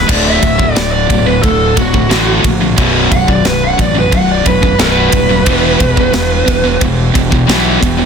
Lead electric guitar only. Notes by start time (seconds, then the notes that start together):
0.09 D5
0.25 E5
0.72 D5
0.92 D5
1.26 B4
1.43 A4
1.78 F#4
3.12 F#5
3.29 D5
3.47 B4
3.64 F#5
3.81 D5
3.99 B4
4.14 F#5
4.32 D5
4.47 B4
4.80 B4